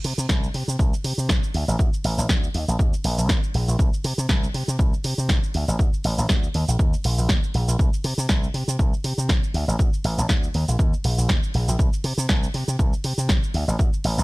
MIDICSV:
0, 0, Header, 1, 4, 480
1, 0, Start_track
1, 0, Tempo, 500000
1, 1721, Time_signature, 4, 2, 24, 8
1, 13666, End_track
2, 0, Start_track
2, 0, Title_t, "Slap bass"
2, 0, Program_c, 0, 36
2, 43, Note_on_c, 0, 48, 101
2, 128, Note_off_c, 0, 48, 0
2, 172, Note_on_c, 0, 48, 103
2, 244, Note_off_c, 0, 48, 0
2, 281, Note_on_c, 0, 36, 94
2, 446, Note_off_c, 0, 36, 0
2, 521, Note_on_c, 0, 48, 88
2, 607, Note_off_c, 0, 48, 0
2, 651, Note_on_c, 0, 48, 85
2, 723, Note_off_c, 0, 48, 0
2, 761, Note_on_c, 0, 36, 97
2, 886, Note_off_c, 0, 36, 0
2, 1001, Note_on_c, 0, 48, 78
2, 1087, Note_off_c, 0, 48, 0
2, 1131, Note_on_c, 0, 48, 80
2, 1240, Note_on_c, 0, 36, 99
2, 1255, Note_off_c, 0, 48, 0
2, 1326, Note_off_c, 0, 36, 0
2, 1482, Note_on_c, 0, 38, 84
2, 1567, Note_off_c, 0, 38, 0
2, 1612, Note_on_c, 0, 33, 101
2, 1684, Note_off_c, 0, 33, 0
2, 1961, Note_on_c, 0, 33, 99
2, 2047, Note_off_c, 0, 33, 0
2, 2091, Note_on_c, 0, 33, 101
2, 2163, Note_off_c, 0, 33, 0
2, 2443, Note_on_c, 0, 39, 86
2, 2528, Note_off_c, 0, 39, 0
2, 2573, Note_on_c, 0, 34, 89
2, 2644, Note_off_c, 0, 34, 0
2, 2681, Note_on_c, 0, 39, 98
2, 2807, Note_off_c, 0, 39, 0
2, 2921, Note_on_c, 0, 34, 81
2, 3007, Note_off_c, 0, 34, 0
2, 3051, Note_on_c, 0, 34, 80
2, 3160, Note_off_c, 0, 34, 0
2, 3160, Note_on_c, 0, 39, 100
2, 3246, Note_off_c, 0, 39, 0
2, 3401, Note_on_c, 0, 34, 83
2, 3487, Note_off_c, 0, 34, 0
2, 3532, Note_on_c, 0, 34, 103
2, 3604, Note_off_c, 0, 34, 0
2, 3882, Note_on_c, 0, 48, 101
2, 3967, Note_off_c, 0, 48, 0
2, 4012, Note_on_c, 0, 48, 101
2, 4084, Note_off_c, 0, 48, 0
2, 4120, Note_on_c, 0, 36, 94
2, 4285, Note_off_c, 0, 36, 0
2, 4361, Note_on_c, 0, 48, 91
2, 4447, Note_off_c, 0, 48, 0
2, 4493, Note_on_c, 0, 48, 87
2, 4564, Note_off_c, 0, 48, 0
2, 4600, Note_on_c, 0, 36, 95
2, 4726, Note_off_c, 0, 36, 0
2, 4842, Note_on_c, 0, 48, 78
2, 4927, Note_off_c, 0, 48, 0
2, 4973, Note_on_c, 0, 48, 80
2, 5080, Note_on_c, 0, 36, 100
2, 5095, Note_off_c, 0, 48, 0
2, 5167, Note_off_c, 0, 36, 0
2, 5324, Note_on_c, 0, 38, 82
2, 5408, Note_off_c, 0, 38, 0
2, 5453, Note_on_c, 0, 33, 99
2, 5524, Note_off_c, 0, 33, 0
2, 5802, Note_on_c, 0, 33, 100
2, 5887, Note_off_c, 0, 33, 0
2, 5933, Note_on_c, 0, 33, 99
2, 6004, Note_off_c, 0, 33, 0
2, 6283, Note_on_c, 0, 39, 86
2, 6368, Note_off_c, 0, 39, 0
2, 6413, Note_on_c, 0, 34, 87
2, 6485, Note_off_c, 0, 34, 0
2, 6763, Note_on_c, 0, 34, 84
2, 6848, Note_off_c, 0, 34, 0
2, 6893, Note_on_c, 0, 34, 83
2, 7001, Note_on_c, 0, 39, 96
2, 7015, Note_off_c, 0, 34, 0
2, 7087, Note_off_c, 0, 39, 0
2, 7241, Note_on_c, 0, 34, 99
2, 7327, Note_off_c, 0, 34, 0
2, 7371, Note_on_c, 0, 34, 83
2, 7444, Note_off_c, 0, 34, 0
2, 7721, Note_on_c, 0, 48, 97
2, 7807, Note_off_c, 0, 48, 0
2, 7850, Note_on_c, 0, 48, 101
2, 7923, Note_off_c, 0, 48, 0
2, 7961, Note_on_c, 0, 36, 98
2, 8126, Note_off_c, 0, 36, 0
2, 8199, Note_on_c, 0, 48, 89
2, 8286, Note_off_c, 0, 48, 0
2, 8331, Note_on_c, 0, 48, 86
2, 8403, Note_off_c, 0, 48, 0
2, 8441, Note_on_c, 0, 36, 96
2, 8565, Note_off_c, 0, 36, 0
2, 8680, Note_on_c, 0, 48, 80
2, 8766, Note_off_c, 0, 48, 0
2, 8811, Note_on_c, 0, 48, 78
2, 8921, Note_on_c, 0, 36, 98
2, 8935, Note_off_c, 0, 48, 0
2, 9007, Note_off_c, 0, 36, 0
2, 9160, Note_on_c, 0, 38, 83
2, 9246, Note_off_c, 0, 38, 0
2, 9291, Note_on_c, 0, 33, 101
2, 9363, Note_off_c, 0, 33, 0
2, 9642, Note_on_c, 0, 33, 101
2, 9727, Note_off_c, 0, 33, 0
2, 9772, Note_on_c, 0, 33, 102
2, 9844, Note_off_c, 0, 33, 0
2, 9880, Note_on_c, 0, 38, 98
2, 10046, Note_off_c, 0, 38, 0
2, 10122, Note_on_c, 0, 39, 89
2, 10207, Note_off_c, 0, 39, 0
2, 10253, Note_on_c, 0, 34, 84
2, 10324, Note_off_c, 0, 34, 0
2, 10601, Note_on_c, 0, 34, 78
2, 10687, Note_off_c, 0, 34, 0
2, 10732, Note_on_c, 0, 34, 78
2, 10840, Note_on_c, 0, 39, 100
2, 10855, Note_off_c, 0, 34, 0
2, 10927, Note_off_c, 0, 39, 0
2, 11082, Note_on_c, 0, 34, 83
2, 11167, Note_off_c, 0, 34, 0
2, 11211, Note_on_c, 0, 34, 100
2, 11283, Note_off_c, 0, 34, 0
2, 11559, Note_on_c, 0, 48, 99
2, 11646, Note_off_c, 0, 48, 0
2, 11689, Note_on_c, 0, 48, 105
2, 11762, Note_off_c, 0, 48, 0
2, 11801, Note_on_c, 0, 36, 101
2, 11966, Note_off_c, 0, 36, 0
2, 12041, Note_on_c, 0, 48, 91
2, 12127, Note_off_c, 0, 48, 0
2, 12171, Note_on_c, 0, 48, 89
2, 12244, Note_off_c, 0, 48, 0
2, 12280, Note_on_c, 0, 36, 97
2, 12406, Note_off_c, 0, 36, 0
2, 12521, Note_on_c, 0, 48, 79
2, 12607, Note_off_c, 0, 48, 0
2, 12650, Note_on_c, 0, 48, 79
2, 12760, Note_on_c, 0, 36, 100
2, 12775, Note_off_c, 0, 48, 0
2, 12846, Note_off_c, 0, 36, 0
2, 13000, Note_on_c, 0, 38, 87
2, 13086, Note_off_c, 0, 38, 0
2, 13130, Note_on_c, 0, 33, 102
2, 13203, Note_off_c, 0, 33, 0
2, 13482, Note_on_c, 0, 33, 102
2, 13567, Note_off_c, 0, 33, 0
2, 13611, Note_on_c, 0, 33, 105
2, 13666, Note_off_c, 0, 33, 0
2, 13666, End_track
3, 0, Start_track
3, 0, Title_t, "Muted slap bass strokes"
3, 892, Note_on_c, 9, 29, 43
3, 988, Note_off_c, 9, 29, 0
3, 1852, Note_on_c, 9, 29, 44
3, 1948, Note_off_c, 9, 29, 0
3, 2813, Note_on_c, 9, 29, 43
3, 2909, Note_off_c, 9, 29, 0
3, 4732, Note_on_c, 9, 29, 42
3, 4828, Note_off_c, 9, 29, 0
3, 5694, Note_on_c, 9, 29, 43
3, 5790, Note_off_c, 9, 29, 0
3, 6653, Note_on_c, 9, 29, 43
3, 6749, Note_off_c, 9, 29, 0
3, 8571, Note_on_c, 9, 29, 43
3, 8667, Note_off_c, 9, 29, 0
3, 10492, Note_on_c, 9, 29, 43
3, 10588, Note_off_c, 9, 29, 0
3, 12411, Note_on_c, 9, 29, 44
3, 12507, Note_off_c, 9, 29, 0
3, 13372, Note_on_c, 9, 29, 44
3, 13468, Note_off_c, 9, 29, 0
3, 13666, End_track
4, 0, Start_track
4, 0, Title_t, "Drums"
4, 42, Note_on_c, 9, 46, 103
4, 138, Note_off_c, 9, 46, 0
4, 178, Note_on_c, 9, 82, 71
4, 274, Note_off_c, 9, 82, 0
4, 280, Note_on_c, 9, 36, 103
4, 280, Note_on_c, 9, 38, 125
4, 288, Note_on_c, 9, 82, 58
4, 376, Note_off_c, 9, 36, 0
4, 376, Note_off_c, 9, 38, 0
4, 384, Note_off_c, 9, 82, 0
4, 418, Note_on_c, 9, 82, 35
4, 514, Note_off_c, 9, 82, 0
4, 521, Note_on_c, 9, 46, 104
4, 617, Note_off_c, 9, 46, 0
4, 658, Note_on_c, 9, 82, 71
4, 754, Note_off_c, 9, 82, 0
4, 761, Note_on_c, 9, 36, 115
4, 768, Note_on_c, 9, 82, 59
4, 857, Note_off_c, 9, 36, 0
4, 864, Note_off_c, 9, 82, 0
4, 898, Note_on_c, 9, 82, 34
4, 994, Note_off_c, 9, 82, 0
4, 1002, Note_on_c, 9, 46, 104
4, 1098, Note_off_c, 9, 46, 0
4, 1138, Note_on_c, 9, 82, 69
4, 1234, Note_off_c, 9, 82, 0
4, 1240, Note_on_c, 9, 36, 105
4, 1240, Note_on_c, 9, 38, 127
4, 1248, Note_on_c, 9, 82, 60
4, 1336, Note_off_c, 9, 36, 0
4, 1336, Note_off_c, 9, 38, 0
4, 1344, Note_off_c, 9, 82, 0
4, 1378, Note_on_c, 9, 82, 36
4, 1474, Note_off_c, 9, 82, 0
4, 1481, Note_on_c, 9, 46, 101
4, 1577, Note_off_c, 9, 46, 0
4, 1618, Note_on_c, 9, 82, 68
4, 1714, Note_off_c, 9, 82, 0
4, 1720, Note_on_c, 9, 36, 120
4, 1727, Note_on_c, 9, 82, 56
4, 1816, Note_off_c, 9, 36, 0
4, 1823, Note_off_c, 9, 82, 0
4, 1857, Note_on_c, 9, 82, 35
4, 1953, Note_off_c, 9, 82, 0
4, 1962, Note_on_c, 9, 46, 107
4, 2058, Note_off_c, 9, 46, 0
4, 2098, Note_on_c, 9, 82, 69
4, 2194, Note_off_c, 9, 82, 0
4, 2200, Note_on_c, 9, 36, 106
4, 2201, Note_on_c, 9, 38, 126
4, 2209, Note_on_c, 9, 82, 57
4, 2296, Note_off_c, 9, 36, 0
4, 2297, Note_off_c, 9, 38, 0
4, 2305, Note_off_c, 9, 82, 0
4, 2338, Note_on_c, 9, 82, 34
4, 2434, Note_off_c, 9, 82, 0
4, 2442, Note_on_c, 9, 46, 108
4, 2538, Note_off_c, 9, 46, 0
4, 2578, Note_on_c, 9, 82, 66
4, 2674, Note_off_c, 9, 82, 0
4, 2680, Note_on_c, 9, 36, 119
4, 2688, Note_on_c, 9, 82, 56
4, 2776, Note_off_c, 9, 36, 0
4, 2784, Note_off_c, 9, 82, 0
4, 2818, Note_on_c, 9, 82, 34
4, 2914, Note_off_c, 9, 82, 0
4, 2921, Note_on_c, 9, 46, 110
4, 3017, Note_off_c, 9, 46, 0
4, 3058, Note_on_c, 9, 82, 69
4, 3154, Note_off_c, 9, 82, 0
4, 3160, Note_on_c, 9, 36, 112
4, 3160, Note_on_c, 9, 38, 124
4, 3168, Note_on_c, 9, 82, 57
4, 3256, Note_off_c, 9, 36, 0
4, 3256, Note_off_c, 9, 38, 0
4, 3264, Note_off_c, 9, 82, 0
4, 3297, Note_on_c, 9, 82, 36
4, 3393, Note_off_c, 9, 82, 0
4, 3401, Note_on_c, 9, 46, 102
4, 3497, Note_off_c, 9, 46, 0
4, 3537, Note_on_c, 9, 82, 66
4, 3633, Note_off_c, 9, 82, 0
4, 3640, Note_on_c, 9, 36, 124
4, 3647, Note_on_c, 9, 82, 54
4, 3736, Note_off_c, 9, 36, 0
4, 3743, Note_off_c, 9, 82, 0
4, 3777, Note_on_c, 9, 82, 31
4, 3873, Note_off_c, 9, 82, 0
4, 3882, Note_on_c, 9, 46, 107
4, 3978, Note_off_c, 9, 46, 0
4, 4018, Note_on_c, 9, 82, 67
4, 4114, Note_off_c, 9, 82, 0
4, 4119, Note_on_c, 9, 36, 107
4, 4120, Note_on_c, 9, 38, 125
4, 4128, Note_on_c, 9, 82, 55
4, 4215, Note_off_c, 9, 36, 0
4, 4216, Note_off_c, 9, 38, 0
4, 4224, Note_off_c, 9, 82, 0
4, 4258, Note_on_c, 9, 82, 32
4, 4354, Note_off_c, 9, 82, 0
4, 4362, Note_on_c, 9, 46, 110
4, 4458, Note_off_c, 9, 46, 0
4, 4498, Note_on_c, 9, 82, 66
4, 4594, Note_off_c, 9, 82, 0
4, 4600, Note_on_c, 9, 36, 120
4, 4607, Note_on_c, 9, 82, 57
4, 4696, Note_off_c, 9, 36, 0
4, 4703, Note_off_c, 9, 82, 0
4, 4738, Note_on_c, 9, 82, 32
4, 4834, Note_off_c, 9, 82, 0
4, 4841, Note_on_c, 9, 46, 110
4, 4937, Note_off_c, 9, 46, 0
4, 4977, Note_on_c, 9, 82, 65
4, 5073, Note_off_c, 9, 82, 0
4, 5079, Note_on_c, 9, 38, 122
4, 5080, Note_on_c, 9, 36, 110
4, 5087, Note_on_c, 9, 82, 56
4, 5175, Note_off_c, 9, 38, 0
4, 5176, Note_off_c, 9, 36, 0
4, 5183, Note_off_c, 9, 82, 0
4, 5217, Note_on_c, 9, 82, 34
4, 5313, Note_off_c, 9, 82, 0
4, 5321, Note_on_c, 9, 46, 105
4, 5417, Note_off_c, 9, 46, 0
4, 5457, Note_on_c, 9, 82, 64
4, 5553, Note_off_c, 9, 82, 0
4, 5560, Note_on_c, 9, 36, 119
4, 5567, Note_on_c, 9, 82, 53
4, 5656, Note_off_c, 9, 36, 0
4, 5663, Note_off_c, 9, 82, 0
4, 5698, Note_on_c, 9, 82, 31
4, 5794, Note_off_c, 9, 82, 0
4, 5801, Note_on_c, 9, 46, 106
4, 5897, Note_off_c, 9, 46, 0
4, 5937, Note_on_c, 9, 82, 65
4, 6033, Note_off_c, 9, 82, 0
4, 6039, Note_on_c, 9, 38, 118
4, 6040, Note_on_c, 9, 36, 108
4, 6047, Note_on_c, 9, 82, 54
4, 6135, Note_off_c, 9, 38, 0
4, 6136, Note_off_c, 9, 36, 0
4, 6143, Note_off_c, 9, 82, 0
4, 6178, Note_on_c, 9, 82, 32
4, 6274, Note_off_c, 9, 82, 0
4, 6281, Note_on_c, 9, 46, 111
4, 6377, Note_off_c, 9, 46, 0
4, 6417, Note_on_c, 9, 82, 64
4, 6513, Note_off_c, 9, 82, 0
4, 6521, Note_on_c, 9, 36, 122
4, 6527, Note_on_c, 9, 82, 54
4, 6617, Note_off_c, 9, 36, 0
4, 6623, Note_off_c, 9, 82, 0
4, 6657, Note_on_c, 9, 82, 31
4, 6753, Note_off_c, 9, 82, 0
4, 6761, Note_on_c, 9, 46, 111
4, 6857, Note_off_c, 9, 46, 0
4, 6896, Note_on_c, 9, 82, 62
4, 6992, Note_off_c, 9, 82, 0
4, 6999, Note_on_c, 9, 38, 120
4, 7001, Note_on_c, 9, 36, 108
4, 7006, Note_on_c, 9, 82, 54
4, 7095, Note_off_c, 9, 38, 0
4, 7097, Note_off_c, 9, 36, 0
4, 7102, Note_off_c, 9, 82, 0
4, 7137, Note_on_c, 9, 82, 32
4, 7233, Note_off_c, 9, 82, 0
4, 7241, Note_on_c, 9, 46, 103
4, 7337, Note_off_c, 9, 46, 0
4, 7377, Note_on_c, 9, 82, 64
4, 7473, Note_off_c, 9, 82, 0
4, 7481, Note_on_c, 9, 36, 120
4, 7487, Note_on_c, 9, 82, 54
4, 7577, Note_off_c, 9, 36, 0
4, 7583, Note_off_c, 9, 82, 0
4, 7618, Note_on_c, 9, 82, 33
4, 7714, Note_off_c, 9, 82, 0
4, 7720, Note_on_c, 9, 46, 103
4, 7816, Note_off_c, 9, 46, 0
4, 7857, Note_on_c, 9, 82, 65
4, 7953, Note_off_c, 9, 82, 0
4, 7959, Note_on_c, 9, 38, 115
4, 7961, Note_on_c, 9, 36, 101
4, 7966, Note_on_c, 9, 82, 54
4, 8055, Note_off_c, 9, 38, 0
4, 8057, Note_off_c, 9, 36, 0
4, 8062, Note_off_c, 9, 82, 0
4, 8098, Note_on_c, 9, 82, 32
4, 8194, Note_off_c, 9, 82, 0
4, 8201, Note_on_c, 9, 46, 109
4, 8297, Note_off_c, 9, 46, 0
4, 8337, Note_on_c, 9, 82, 65
4, 8433, Note_off_c, 9, 82, 0
4, 8440, Note_on_c, 9, 36, 116
4, 8447, Note_on_c, 9, 82, 54
4, 8536, Note_off_c, 9, 36, 0
4, 8543, Note_off_c, 9, 82, 0
4, 8577, Note_on_c, 9, 82, 31
4, 8673, Note_off_c, 9, 82, 0
4, 8681, Note_on_c, 9, 46, 105
4, 8777, Note_off_c, 9, 46, 0
4, 8817, Note_on_c, 9, 82, 66
4, 8913, Note_off_c, 9, 82, 0
4, 8920, Note_on_c, 9, 36, 109
4, 8920, Note_on_c, 9, 38, 114
4, 8928, Note_on_c, 9, 82, 54
4, 9016, Note_off_c, 9, 36, 0
4, 9016, Note_off_c, 9, 38, 0
4, 9024, Note_off_c, 9, 82, 0
4, 9058, Note_on_c, 9, 82, 33
4, 9154, Note_off_c, 9, 82, 0
4, 9162, Note_on_c, 9, 46, 104
4, 9258, Note_off_c, 9, 46, 0
4, 9298, Note_on_c, 9, 82, 64
4, 9394, Note_off_c, 9, 82, 0
4, 9400, Note_on_c, 9, 36, 116
4, 9408, Note_on_c, 9, 82, 56
4, 9496, Note_off_c, 9, 36, 0
4, 9504, Note_off_c, 9, 82, 0
4, 9538, Note_on_c, 9, 82, 33
4, 9634, Note_off_c, 9, 82, 0
4, 9642, Note_on_c, 9, 46, 100
4, 9738, Note_off_c, 9, 46, 0
4, 9778, Note_on_c, 9, 82, 67
4, 9874, Note_off_c, 9, 82, 0
4, 9880, Note_on_c, 9, 36, 101
4, 9880, Note_on_c, 9, 38, 111
4, 9887, Note_on_c, 9, 82, 55
4, 9976, Note_off_c, 9, 36, 0
4, 9976, Note_off_c, 9, 38, 0
4, 9983, Note_off_c, 9, 82, 0
4, 10017, Note_on_c, 9, 82, 33
4, 10113, Note_off_c, 9, 82, 0
4, 10121, Note_on_c, 9, 46, 101
4, 10217, Note_off_c, 9, 46, 0
4, 10257, Note_on_c, 9, 82, 65
4, 10353, Note_off_c, 9, 82, 0
4, 10359, Note_on_c, 9, 36, 113
4, 10366, Note_on_c, 9, 82, 56
4, 10455, Note_off_c, 9, 36, 0
4, 10462, Note_off_c, 9, 82, 0
4, 10497, Note_on_c, 9, 82, 33
4, 10593, Note_off_c, 9, 82, 0
4, 10601, Note_on_c, 9, 46, 99
4, 10697, Note_off_c, 9, 46, 0
4, 10737, Note_on_c, 9, 82, 67
4, 10833, Note_off_c, 9, 82, 0
4, 10839, Note_on_c, 9, 38, 117
4, 10840, Note_on_c, 9, 36, 102
4, 10847, Note_on_c, 9, 82, 58
4, 10935, Note_off_c, 9, 38, 0
4, 10936, Note_off_c, 9, 36, 0
4, 10943, Note_off_c, 9, 82, 0
4, 10977, Note_on_c, 9, 82, 33
4, 11073, Note_off_c, 9, 82, 0
4, 11080, Note_on_c, 9, 46, 98
4, 11176, Note_off_c, 9, 46, 0
4, 11216, Note_on_c, 9, 82, 65
4, 11312, Note_off_c, 9, 82, 0
4, 11320, Note_on_c, 9, 36, 111
4, 11326, Note_on_c, 9, 82, 58
4, 11416, Note_off_c, 9, 36, 0
4, 11422, Note_off_c, 9, 82, 0
4, 11455, Note_on_c, 9, 82, 34
4, 11551, Note_off_c, 9, 82, 0
4, 11559, Note_on_c, 9, 46, 98
4, 11655, Note_off_c, 9, 46, 0
4, 11696, Note_on_c, 9, 82, 71
4, 11792, Note_off_c, 9, 82, 0
4, 11798, Note_on_c, 9, 38, 118
4, 11800, Note_on_c, 9, 36, 100
4, 11806, Note_on_c, 9, 82, 57
4, 11894, Note_off_c, 9, 38, 0
4, 11896, Note_off_c, 9, 36, 0
4, 11902, Note_off_c, 9, 82, 0
4, 11937, Note_on_c, 9, 82, 35
4, 12033, Note_off_c, 9, 82, 0
4, 12040, Note_on_c, 9, 46, 101
4, 12136, Note_off_c, 9, 46, 0
4, 12176, Note_on_c, 9, 82, 69
4, 12272, Note_off_c, 9, 82, 0
4, 12280, Note_on_c, 9, 36, 115
4, 12285, Note_on_c, 9, 82, 60
4, 12376, Note_off_c, 9, 36, 0
4, 12381, Note_off_c, 9, 82, 0
4, 12415, Note_on_c, 9, 82, 34
4, 12511, Note_off_c, 9, 82, 0
4, 12519, Note_on_c, 9, 46, 99
4, 12615, Note_off_c, 9, 46, 0
4, 12655, Note_on_c, 9, 82, 69
4, 12751, Note_off_c, 9, 82, 0
4, 12758, Note_on_c, 9, 38, 119
4, 12760, Note_on_c, 9, 36, 103
4, 12766, Note_on_c, 9, 82, 58
4, 12854, Note_off_c, 9, 38, 0
4, 12856, Note_off_c, 9, 36, 0
4, 12862, Note_off_c, 9, 82, 0
4, 12897, Note_on_c, 9, 82, 35
4, 12993, Note_off_c, 9, 82, 0
4, 13001, Note_on_c, 9, 46, 98
4, 13097, Note_off_c, 9, 46, 0
4, 13137, Note_on_c, 9, 82, 67
4, 13233, Note_off_c, 9, 82, 0
4, 13240, Note_on_c, 9, 36, 117
4, 13247, Note_on_c, 9, 82, 60
4, 13336, Note_off_c, 9, 36, 0
4, 13343, Note_off_c, 9, 82, 0
4, 13376, Note_on_c, 9, 82, 36
4, 13472, Note_off_c, 9, 82, 0
4, 13481, Note_on_c, 9, 46, 100
4, 13577, Note_off_c, 9, 46, 0
4, 13617, Note_on_c, 9, 82, 71
4, 13666, Note_off_c, 9, 82, 0
4, 13666, End_track
0, 0, End_of_file